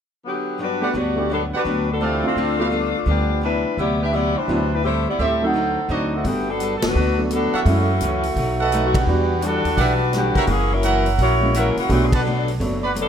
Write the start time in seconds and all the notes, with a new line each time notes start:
0.25 D3 F#3 B3 G4
0.58 G2 F#3 G3 B3 D4 F#4 B4
0.81 A3 B3 D4 F#4 G4 B4 D5 F#5
0.93 D2 G2 F#3 B3 D4 F#4 G4 D5
1.16 A3 B3 D4 G4
1.30 G2 F#3 B3 D4 A4
1.52 G3 D4 F#4 G4 B4 D5 F#5
1.65 D2 G2 F#3 B3 D4
1.90 F#3 B3 D4 A4
2.00 D3 E3 A3 C4 F4 G4 A4 C5 D5 F5
2.24 A3 C4 D4 E4 F4
2.35 D2 D3 A3 C4 F4
2.58 A3 B3 D4 F4 G4 A4 B4 F5
2.70 G3 B3 F4 A4
3.06 D2 F3 G3 B3 D4 F4 G4 A4
3.41 C3 F#3 G3 B3 D4 E4 B4
3.77 D2 C3 F#3 B3 E4 G4 D5
4.01 D4 G4 B4 E5
4.13 C3 F#3 B3 E4 G4 D5
4.17 E4
4.35 G3 D4 E4 C5
4.48 D2 C3 F#3 B3 D4 E4
4.72 G3 D4 E4 B4
4.84 A2 G3 A3 C4 E4 G4 C5
5.08 B3 E4 G4 D5
5.19 D2 A2 G3 C4 E4 G4 A4 C5 E5
5.42 F#3 A3 C4 D#4 A4 C5 F#5
5.54 D3 F#3 C4 D#4
5.89 D2 D3 F#3 C4 D#4 F#4 C5 D5 D#5
6.14 D#3 A3 C4 F#4
6.24 G1 D3 G3 A3 B3 F#4 G4 A4, kick, open hi-hat
6.49 F#3 B3 D4 A4
6.60 G3 B3 F#4 A4, closed hi-hat
6.76 A4
6.82 F#1 A3 D4 F#4 B4, snare, ride
6.95 D2 G3 B3 F#4 A4
7.18 F#3 A3 B3 D4
7.31 F#3 G3 B3 D4 F#4 A4, closed hi-hat
7.53 E3 A3 C#4 F#4 A4 C#5 E5 F#5, muted upright bass stroke
7.65 F#2 E3 G#3 A3 C#4 E4, kick, open hi-hat
8.01 C#2 F#2 E3 A3 C#4, closed hi-hat
8.23 open hi-hat
8.36 B1 B2 F#3 A3, kick, open hi-hat
8.40 D#4
8.60 A4 B4 D#5 F#5
8.72 B2 F#3 A3 D#4, closed hi-hat
8.86 F#4
8.94 D3 B3 F#4 G4, kick, ride
9.06 E2 E3 G3 B3 D4 F#4
9.41 E3 G3 D4 F#4 A4, closed hi-hat
9.65 D#2, open hi-hat
9.77 B1 E3 G3 D4 F#4 G4 B4 D5 E5 F#5, kick, open hi-hat
10.13 D3 E3 G3 B3 D4 F#4 G4, snare, closed hi-hat
10.35 A#4 C#5 E5 F#5, muted upright bass stroke, kick, open hi-hat
10.47 F#1 F#2 E3 A#3 C#4 G#4, kick, open hi-hat
10.72 F#3 C#4 E4 A#4
10.83 F#2 E3 A#3 C#4 A#4 C#5 E5 F#5, closed hi-hat
11.06 open hi-hat
11.18 A#1 F#2 E3 A#3 C#4 E4 F#4 C#5, kick, open hi-hat
11.41 G#3 A#3 C#4 E4
11.53 F#2 E3 F#3 A#3 C#4 E4 A#4 C#5 E5 F#5, closed hi-hat
11.77 E3 A#3 C#4 F#4, muted upright bass stroke, open hi-hat
11.89 B1 B2 E3 F#3 A3 B3 C4 D4 F#4 G4, kick, open hi-hat
12.05 G#4
12.12 F#3 B3 D4 A4 B4 D5 F#5 A5, kick, ride
12.25 B2 F#3 A3 D4
12.48 open hi-hat
12.60 F#1 B2 F#3 A3 B3 D4 F#4, kick, open hi-hat
12.83 B4 D5 F#5 B5
12.94 B2 F#3 A3 D4, closed hi-hat
12.99 F#3 B3 D4 A4